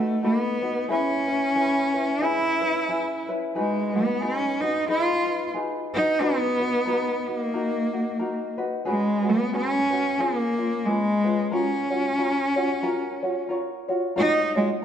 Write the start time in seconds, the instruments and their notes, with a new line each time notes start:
Already playing: cello A3, ukulele D#4 F#4 B4
0.22 cello B3, ukulele D#4 F#4 A4 B4
0.61 ukulele D#4 F#4 B4
0.88 ukulele C#4 E4 G#4 B4, cello C#4
1.27 ukulele C#4 E4 B4
1.55 ukulele C#4 E4 G#4 B4
1.94 ukulele C#4 E4 B4
2.21 ukulele C#4 E4 G#4 B4, cello E4
2.61 ukulele C#4 E4 B4
2.88 ukulele C#4 E4 G#4 B4
3.29 ukulele C#4 E4 B4
3.55 cello G#3, ukulele D#4 F#4 G#4 B4
3.93 cello B3, ukulele D#4 F#4 B4
4.20 cello C#4, ukulele D#4 F#4 G#4 B4
4.61 cello D#4, ukulele D#4 F#4 B4
4.88 ukulele D#4 G#4 B4, cello F4
5.26 ukulele D#4 B4
5.54 ukulele D#4 F#4 G#4 B4
5.94 cello D#4, ukulele D#4 F#4 B4
6.21 cello B3, ukulele D#4 F#4 A#4 B4
6.59 ukulele D#4 F#4 B4
6.85 ukulele D#4 F#4 A#4 B4
7.27 cello A#3, ukulele D#4 F#4
7.54 ukulele D#4 F#4 A#4
7.93 ukulele D#4 F#4
8.19 ukulele D#4 F#4 A#4
8.58 ukulele D#4 F#4 B4
8.85 cello G#3, ukulele C#4 F#4 G#4 B4
9.22 ukulele C#4 F#4 B4
9.30 cello B3
9.52 ukulele C#4 F#4 G#4 B4
9.56 cello C#4
9.90 ukulele C#4 F#4 B4
10.18 cello A#3, ukulele C#4 F4 G#4
10.58 ukulele C#4 F4
10.86 cello G#3, ukulele C#4 F4 G#4 B4
11.24 ukulele C#4 F4 B4
11.51 cello C#4, ukulele F4 F#4 A#4 C#5
11.90 ukulele F4 F#4 C#5
12.17 ukulele F4 F#4 A#4 C#5
12.56 ukulele F4 F#4 C#5
12.83 ukulele F4 F#4 A#4 C#5
13.23 ukulele F4 F#4 C#5
13.49 ukulele F4 F#4 A#4 C#5
13.88 ukulele F4 F#4 C#5
14.16 cello D#4, ukulele F4 F#4 A#4 C#5
14.55 cello G#3, ukulele F4 F#4 C#5